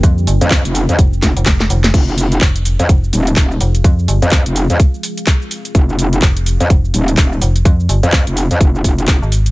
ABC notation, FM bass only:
X:1
M:4/4
L:1/16
Q:"Swing 16ths" 1/4=126
K:Fdor
V:1 name="FM bass" clef=bass
F,,2 G,,, z4 z F,,,2 z F,,,3 F,,,2 | z4 F,,,3 z F,,,2 z4 F,,,2 | F,,2 G,,, z12 z | z4 F,,,3 z F,,,2 z4 F,,,2 |
F,,2 G,,, z8 z2 A,,,3 |]